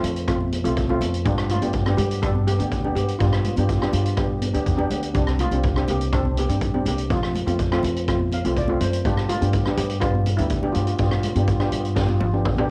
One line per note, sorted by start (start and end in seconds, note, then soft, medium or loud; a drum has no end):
0.00 0.60 F2 medium
0.00 0.13 A3 loud
0.00 0.25 A3 medium
0.00 0.14 C4 loud
0.00 0.14 F4 loud
0.00 closed hi-hat loud
0.00 low conga medium
0.16 closed hi-hat medium
0.28 0.50 A3 medium
0.28 0.50 C4 medium
0.28 0.50 F4 medium
0.28 kick loud
0.28 cross-stick medium
0.28 closed hi-hat medium
0.41 high conga medium
0.52 closed hi-hat medium
0.52 high conga medium
0.64 0.97 C2 loud
0.64 0.79 A3 medium
0.64 0.79 C4 medium
0.64 0.79 F4 loud
0.64 closed hi-hat medium
0.77 kick loud
0.77 closed hi-hat medium
0.89 1.11 A3 loud
0.89 1.11 C4 medium
0.89 1.11 F4 loud
0.89 high conga medium
1.01 1.23 F2 medium
1.01 closed hi-hat medium
1.01 high conga medium
1.01 low conga medium
1.14 closed hi-hat medium
1.25 1.59 G2 loud
1.25 1.47 B3 medium
1.25 1.47 D4 medium
1.25 1.51 D4 medium
1.25 1.49 F4 medium
1.25 1.47 G4 medium
1.25 kick loud
1.25 closed hi-hat medium
1.25 low conga medium
1.38 cross-stick medium
1.49 1.96 A3 medium
1.49 1.96 F4 loud
1.49 closed hi-hat medium
1.49 low conga medium
1.62 1.95 G2 medium
1.62 1.77 B3 medium
1.62 1.77 D4 medium
1.62 1.77 G4 medium
1.62 closed hi-hat medium
1.62 high conga medium
1.73 kick loud
1.73 closed hi-hat medium
1.86 2.09 B3 medium
1.86 2.09 D4 medium
1.86 2.09 G4 medium
1.86 cross-stick medium
1.97 2.55 G2 loud
1.97 2.21 B3 medium
1.97 2.23 G4 loud
1.97 closed hi-hat medium
1.97 low conga loud
2.11 closed hi-hat medium
2.22 2.45 B3 medium
2.22 2.45 D4 medium
2.22 2.47 D4 medium
2.22 2.45 G4 medium
2.22 2.48 A4 loud
2.22 kick loud
2.22 cross-stick medium
2.22 closed hi-hat medium
2.35 high conga medium
2.47 2.94 B3 medium
2.47 2.92 G4 loud
2.47 closed hi-hat medium
2.47 high conga medium
2.59 2.92 D2 medium
2.59 2.74 B3 medium
2.59 2.74 D4 medium
2.59 2.74 G4 medium
2.59 closed hi-hat medium
2.72 kick medium
2.72 closed hi-hat medium
2.84 3.06 B3 medium
2.84 3.06 D4 medium
2.84 3.06 G4 medium
2.84 high conga medium
2.95 3.18 G2 medium
2.95 3.20 B3 medium
2.95 3.18 G4 loud
2.95 closed hi-hat medium
2.95 high conga medium
2.95 low conga medium
3.08 closed hi-hat medium
3.19 3.54 G2 medium
3.19 3.43 B3 medium
3.19 3.28 B3 medium
3.19 3.43 D4 medium
3.19 3.26 F4 medium
3.19 3.43 G4 medium
3.19 kick loud
3.19 closed hi-hat medium
3.27 3.34 F4 medium
3.33 3.39 F4 medium
3.33 cross-stick medium
3.40 3.47 F4 medium
3.45 3.55 F4 medium
3.45 closed hi-hat medium
3.45 low conga medium
3.56 3.90 G2 medium
3.56 3.72 B3 medium
3.56 3.72 D4 medium
3.56 3.62 F4 medium
3.56 3.72 G4 medium
3.56 closed hi-hat medium
3.56 high conga medium
3.63 3.69 F4 medium
3.69 3.78 F4 medium
3.69 kick loud
3.69 closed hi-hat medium
3.79 4.04 B3 medium
3.79 4.04 D4 medium
3.79 3.85 F4 medium
3.79 4.04 G4 medium
3.79 cross-stick medium
3.86 3.91 F4 soft
3.93 4.50 G2 medium
3.93 4.00 F4 medium
3.93 closed hi-hat medium
3.93 low conga medium
4.02 4.09 F4 medium
4.06 closed hi-hat medium
4.17 4.40 B3 medium
4.17 4.40 D4 medium
4.17 4.40 G4 medium
4.17 kick loud
4.17 cross-stick medium
4.17 closed hi-hat medium
4.42 closed hi-hat medium
4.42 high conga medium
4.54 4.65 D2 medium
4.54 4.69 B3 medium
4.54 4.69 D4 medium
4.54 4.69 G4 medium
4.54 closed hi-hat medium
4.66 4.88 E2 medium
4.66 kick medium
4.66 closed hi-hat medium
4.77 5.00 B3 loud
4.77 5.00 D4 medium
4.77 5.00 G4 loud
4.77 high conga medium
4.90 5.13 D2 medium
4.90 closed hi-hat medium
4.90 high conga medium
4.90 low conga medium
5.03 closed hi-hat medium
5.14 5.48 C2 loud
5.14 5.26 G3 medium
5.14 5.36 C4 medium
5.14 5.37 D4 medium
5.14 5.26 D4 medium
5.14 5.37 G4 medium
5.14 kick loud
5.14 closed hi-hat medium
5.14 low conga medium
5.27 cross-stick medium
5.39 5.85 A3 medium
5.39 5.90 F4 loud
5.39 closed hi-hat medium
5.39 low conga medium
5.51 5.84 C2 medium
5.51 5.66 C4 medium
5.51 5.67 D4 medium
5.51 5.67 G4 medium
5.51 closed hi-hat medium
5.51 high conga medium
5.63 kick loud
5.63 closed hi-hat medium
5.76 5.98 C4 medium
5.76 5.99 D4 medium
5.76 5.99 G4 medium
5.76 cross-stick medium
5.88 6.45 C2 medium
5.88 6.12 A#3 medium
5.88 6.14 G4 loud
5.88 closed hi-hat medium
5.88 low conga medium
6.01 closed hi-hat medium
6.13 6.35 C4 medium
6.13 6.36 C4 medium
6.13 6.35 D4 medium
6.13 6.35 G4 medium
6.13 6.38 A4 loud
6.13 kick loud
6.13 cross-stick medium
6.13 closed hi-hat medium
6.25 high conga medium
6.37 6.83 A#3 medium
6.37 6.86 G4 loud
6.37 closed hi-hat medium
6.37 high conga medium
6.49 6.82 G2 loud
6.49 6.64 C4 medium
6.49 6.64 D4 medium
6.49 6.64 G4 medium
6.49 closed hi-hat medium
6.61 kick medium
6.61 closed hi-hat medium
6.74 6.96 C4 medium
6.74 6.96 D4 medium
6.74 6.96 G4 medium
6.74 high conga medium
6.85 7.08 C2 medium
6.85 7.09 A#3 medium
6.85 7.12 G4 medium
6.85 closed hi-hat medium
6.85 high conga medium
6.85 low conga medium
6.98 closed hi-hat medium
7.10 7.43 F2 medium
7.10 7.32 A3 medium
7.10 8.04 A3 medium
7.10 7.32 C4 medium
7.10 7.32 F4 medium
7.10 8.04 F4 medium
7.10 kick loud
7.10 closed hi-hat medium
7.10 low conga medium
7.23 cross-stick medium
7.35 closed hi-hat medium
7.35 low conga medium
7.46 7.79 F2 medium
7.46 7.61 A3 medium
7.46 7.61 C4 medium
7.46 7.61 F4 medium
7.46 closed hi-hat medium
7.46 high conga medium
7.59 kick loud
7.59 closed hi-hat medium
7.71 7.93 A3 loud
7.71 7.93 C4 loud
7.71 7.94 F4 loud
7.71 cross-stick medium
7.83 8.40 F2 loud
7.83 closed hi-hat medium
7.83 low conga medium
7.96 closed hi-hat medium
8.08 8.29 A3 medium
8.08 8.30 C4 medium
8.08 8.30 F4 medium
8.08 kick loud
8.08 cross-stick medium
8.08 closed hi-hat medium
8.19 high conga medium
8.32 8.55 F5 medium
8.32 closed hi-hat medium
8.32 high conga medium
8.45 8.77 C2 loud
8.45 8.59 A3 medium
8.45 8.59 C4 medium
8.45 8.59 F4 medium
8.45 closed hi-hat medium
8.56 8.80 D5 medium
8.56 kick medium
8.56 closed hi-hat medium
8.68 8.90 A3 loud
8.68 8.91 C4 medium
8.68 8.91 F4 loud
8.68 high conga medium
8.80 9.02 F#2 medium
8.80 9.03 C5 medium
8.80 closed hi-hat medium
8.80 high conga medium
8.80 low conga medium
8.93 closed hi-hat medium
9.05 9.38 G2 medium
9.05 9.27 B3 medium
9.05 9.27 D4 medium
9.05 9.30 D4 loud
9.05 9.28 F4 medium
9.05 9.27 G4 medium
9.05 kick loud
9.05 closed hi-hat medium
9.05 low conga medium
9.17 cross-stick medium
9.29 9.75 A3 medium
9.29 9.79 F4 loud
9.29 closed hi-hat medium
9.29 low conga medium
9.41 9.74 G2 medium
9.41 9.56 B3 medium
9.41 9.56 D4 medium
9.41 9.56 G4 medium
9.41 closed hi-hat medium
9.41 high conga medium
9.53 kick medium
9.53 closed hi-hat medium
9.65 9.88 B3 medium
9.65 9.88 D4 medium
9.65 9.88 G4 medium
9.65 cross-stick medium
9.77 10.35 G2 loud
9.77 10.01 B3 medium
9.77 10.00 G4 loud
9.77 closed hi-hat loud
9.77 low conga medium
9.90 closed hi-hat medium
10.00 10.24 B3 medium
10.00 10.37 B3 medium
10.00 10.24 D4 medium
10.00 10.35 F4 loud
10.00 10.25 G4 medium
10.00 kick loud
10.00 cross-stick medium
10.00 closed hi-hat medium
10.15 high conga medium
10.26 closed hi-hat medium
10.26 high conga medium
10.37 10.72 D2 loud
10.37 10.72 G3 medium
10.37 10.53 B3 medium
10.37 10.53 D4 medium
10.37 10.75 E4 loud
10.37 10.54 G4 medium
10.37 closed hi-hat medium
10.50 kick medium
10.50 closed hi-hat medium
10.62 10.85 B3 medium
10.62 10.85 D4 medium
10.62 10.85 G4 medium
10.62 high conga medium
10.72 10.97 G2 medium
10.72 10.82 A3 medium
10.72 10.79 F4 medium
10.72 closed hi-hat medium
10.72 low conga medium
10.80 10.86 F4 medium
10.87 10.95 F4 medium
10.87 closed hi-hat medium
10.96 11.33 G2 medium
10.96 11.21 B3 medium
10.96 11.21 D4 medium
10.96 11.02 F4 medium
10.96 11.21 G4 medium
10.96 kick loud
10.96 closed hi-hat medium
11.03 11.09 F4 medium
11.11 11.18 F4 medium
11.11 cross-stick medium
11.20 11.27 F4 medium
11.20 closed hi-hat medium
11.20 low conga medium
11.28 11.34 F4 medium
11.35 11.69 G2 loud
11.35 11.50 B3 medium
11.35 11.51 D4 medium
11.35 11.42 F4 medium
11.35 11.51 G4 medium
11.35 closed hi-hat medium
11.35 high conga medium
11.43 11.49 F4 medium
11.48 11.57 F4 medium
11.48 kick loud
11.48 closed hi-hat medium
11.60 11.82 B3 medium
11.60 11.82 D4 medium
11.60 11.64 F4 medium
11.60 11.82 G4 medium
11.60 cross-stick medium
11.65 11.71 F4 medium
11.72 12.17 G2 medium
11.72 11.79 F4 medium
11.72 closed hi-hat medium
11.80 11.86 F4 medium
11.85 11.94 F4 medium
11.85 closed hi-hat medium
11.95 12.19 B3 medium
11.95 12.19 D4 medium
11.95 12.00 F4 medium
11.95 12.19 G4 medium
11.95 kick loud
11.95 snare medium
12.02 12.08 F4 medium
12.09 12.15 F4 medium
12.09 high conga medium
12.16 12.23 F4 medium
12.20 12.43 G1 medium
12.20 12.32 F4 medium
12.20 high tom medium
12.20 high conga medium
12.33 12.48 B3 medium
12.33 12.48 D4 medium
12.33 12.48 G4 medium
12.45 12.67 A1 medium
12.45 kick medium
12.45 mid tom loud
12.57 12.70 B3 medium
12.57 12.70 D4 medium
12.57 12.70 G4 loud
12.57 mid tom medium
12.57 high conga medium